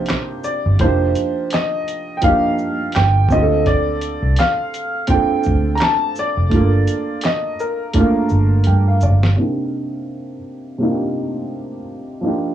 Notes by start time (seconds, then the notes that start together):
Already playing: C3 A#3 D4 D#4 F4 G4 C5
0.06 clap, closed hi-hat
0.10 snare
0.44 D5, shaker
0.66 G1
0.79 F3 A#3 D4 C5, kick, closed hi-hat
0.83 D#4 G4
1.15 closed hi-hat, shaker
1.50 D#5, snare, clap, closed hi-hat
1.88 closed hi-hat, shaker
2.17 G5
2.21 F3 A#3 D4 F5, kick, closed hi-hat
2.25 D#4 G4
2.58 shaker
2.92 G5, clap, closed hi-hat
2.96 G1, snare
3.29 D2 D3 C4 D#5, kick, shaker
3.34 F4 G4
3.42 A4
3.66 D5, kick, closed hi-hat
4.01 closed hi-hat, shaker
4.22 C2
4.36 F5, snare, clap, closed hi-hat
4.74 closed hi-hat, shaker
5.07 C4 D4 G5, kick, closed hi-hat
5.11 F4 A4
5.43 D2, kick, shaker
5.75 A#5, closed hi-hat
5.81 A5, snare, clap
6.16 D5, shaker
6.37 F1
6.49 G1 A3 D4, kick, closed hi-hat
6.53 A#3 F4 A4
6.87 closed hi-hat, shaker
7.21 snare, clap, closed hi-hat
7.26 D#5
7.59 A#4, shaker
7.93 A3 D4 F4, kick, closed hi-hat
7.99 A#3 A#4
8.29 G1, shaker
8.64 G2 G5, closed hi-hat
8.88 F5
9.01 G1 D5, shaker
9.23 snare
9.36 C3 A#3 D4 D#4
9.42 G4
10.78 C3 A#3 D4
10.83 D#4 F4
10.91 G4
12.21 F3 A#3 D4
12.25 D#4 G4